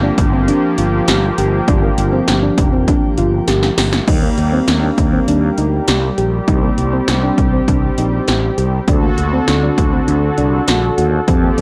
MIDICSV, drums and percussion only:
0, 0, Header, 1, 2, 480
1, 0, Start_track
1, 0, Key_signature, -2, "minor"
1, 0, Tempo, 600000
1, 1342, Time_signature, 4, 2, 24, 8
1, 9289, End_track
2, 0, Start_track
2, 0, Title_t, "Drums"
2, 143, Note_on_c, 9, 36, 92
2, 143, Note_on_c, 9, 42, 79
2, 223, Note_off_c, 9, 36, 0
2, 223, Note_off_c, 9, 42, 0
2, 384, Note_on_c, 9, 42, 76
2, 464, Note_off_c, 9, 42, 0
2, 622, Note_on_c, 9, 42, 71
2, 702, Note_off_c, 9, 42, 0
2, 861, Note_on_c, 9, 42, 95
2, 863, Note_on_c, 9, 38, 115
2, 941, Note_off_c, 9, 42, 0
2, 943, Note_off_c, 9, 38, 0
2, 1103, Note_on_c, 9, 42, 77
2, 1183, Note_off_c, 9, 42, 0
2, 1342, Note_on_c, 9, 36, 124
2, 1342, Note_on_c, 9, 42, 69
2, 1422, Note_off_c, 9, 36, 0
2, 1422, Note_off_c, 9, 42, 0
2, 1583, Note_on_c, 9, 42, 78
2, 1663, Note_off_c, 9, 42, 0
2, 1822, Note_on_c, 9, 38, 119
2, 1823, Note_on_c, 9, 42, 93
2, 1902, Note_off_c, 9, 38, 0
2, 1903, Note_off_c, 9, 42, 0
2, 2062, Note_on_c, 9, 36, 88
2, 2062, Note_on_c, 9, 42, 79
2, 2142, Note_off_c, 9, 36, 0
2, 2142, Note_off_c, 9, 42, 0
2, 2302, Note_on_c, 9, 36, 88
2, 2303, Note_on_c, 9, 42, 78
2, 2382, Note_off_c, 9, 36, 0
2, 2383, Note_off_c, 9, 42, 0
2, 2541, Note_on_c, 9, 42, 72
2, 2621, Note_off_c, 9, 42, 0
2, 2782, Note_on_c, 9, 42, 96
2, 2783, Note_on_c, 9, 38, 64
2, 2862, Note_off_c, 9, 42, 0
2, 2863, Note_off_c, 9, 38, 0
2, 2902, Note_on_c, 9, 38, 69
2, 2982, Note_off_c, 9, 38, 0
2, 3023, Note_on_c, 9, 38, 99
2, 3024, Note_on_c, 9, 46, 77
2, 3103, Note_off_c, 9, 38, 0
2, 3104, Note_off_c, 9, 46, 0
2, 3142, Note_on_c, 9, 38, 97
2, 3222, Note_off_c, 9, 38, 0
2, 3261, Note_on_c, 9, 42, 67
2, 3262, Note_on_c, 9, 36, 120
2, 3262, Note_on_c, 9, 49, 93
2, 3341, Note_off_c, 9, 42, 0
2, 3342, Note_off_c, 9, 36, 0
2, 3342, Note_off_c, 9, 49, 0
2, 3502, Note_on_c, 9, 42, 75
2, 3582, Note_off_c, 9, 42, 0
2, 3742, Note_on_c, 9, 38, 120
2, 3743, Note_on_c, 9, 42, 89
2, 3822, Note_off_c, 9, 38, 0
2, 3823, Note_off_c, 9, 42, 0
2, 3982, Note_on_c, 9, 36, 85
2, 3982, Note_on_c, 9, 42, 74
2, 4062, Note_off_c, 9, 36, 0
2, 4062, Note_off_c, 9, 42, 0
2, 4223, Note_on_c, 9, 42, 74
2, 4303, Note_off_c, 9, 42, 0
2, 4460, Note_on_c, 9, 42, 72
2, 4540, Note_off_c, 9, 42, 0
2, 4701, Note_on_c, 9, 42, 89
2, 4703, Note_on_c, 9, 38, 115
2, 4781, Note_off_c, 9, 42, 0
2, 4783, Note_off_c, 9, 38, 0
2, 4943, Note_on_c, 9, 42, 75
2, 5023, Note_off_c, 9, 42, 0
2, 5182, Note_on_c, 9, 36, 118
2, 5182, Note_on_c, 9, 42, 67
2, 5262, Note_off_c, 9, 36, 0
2, 5262, Note_off_c, 9, 42, 0
2, 5423, Note_on_c, 9, 42, 76
2, 5503, Note_off_c, 9, 42, 0
2, 5662, Note_on_c, 9, 38, 119
2, 5663, Note_on_c, 9, 42, 90
2, 5742, Note_off_c, 9, 38, 0
2, 5743, Note_off_c, 9, 42, 0
2, 5902, Note_on_c, 9, 36, 84
2, 5903, Note_on_c, 9, 42, 73
2, 5982, Note_off_c, 9, 36, 0
2, 5983, Note_off_c, 9, 42, 0
2, 6143, Note_on_c, 9, 36, 87
2, 6144, Note_on_c, 9, 42, 74
2, 6223, Note_off_c, 9, 36, 0
2, 6224, Note_off_c, 9, 42, 0
2, 6382, Note_on_c, 9, 42, 71
2, 6462, Note_off_c, 9, 42, 0
2, 6621, Note_on_c, 9, 42, 91
2, 6624, Note_on_c, 9, 38, 113
2, 6701, Note_off_c, 9, 42, 0
2, 6704, Note_off_c, 9, 38, 0
2, 6864, Note_on_c, 9, 42, 73
2, 6944, Note_off_c, 9, 42, 0
2, 7102, Note_on_c, 9, 36, 119
2, 7102, Note_on_c, 9, 42, 71
2, 7182, Note_off_c, 9, 36, 0
2, 7182, Note_off_c, 9, 42, 0
2, 7342, Note_on_c, 9, 42, 75
2, 7422, Note_off_c, 9, 42, 0
2, 7582, Note_on_c, 9, 38, 122
2, 7583, Note_on_c, 9, 42, 89
2, 7662, Note_off_c, 9, 38, 0
2, 7663, Note_off_c, 9, 42, 0
2, 7822, Note_on_c, 9, 36, 85
2, 7823, Note_on_c, 9, 42, 73
2, 7902, Note_off_c, 9, 36, 0
2, 7903, Note_off_c, 9, 42, 0
2, 8064, Note_on_c, 9, 42, 73
2, 8144, Note_off_c, 9, 42, 0
2, 8302, Note_on_c, 9, 42, 70
2, 8382, Note_off_c, 9, 42, 0
2, 8542, Note_on_c, 9, 42, 95
2, 8544, Note_on_c, 9, 38, 111
2, 8622, Note_off_c, 9, 42, 0
2, 8624, Note_off_c, 9, 38, 0
2, 8784, Note_on_c, 9, 42, 74
2, 8864, Note_off_c, 9, 42, 0
2, 9022, Note_on_c, 9, 36, 117
2, 9022, Note_on_c, 9, 42, 69
2, 9102, Note_off_c, 9, 36, 0
2, 9102, Note_off_c, 9, 42, 0
2, 9263, Note_on_c, 9, 42, 72
2, 9289, Note_off_c, 9, 42, 0
2, 9289, End_track
0, 0, End_of_file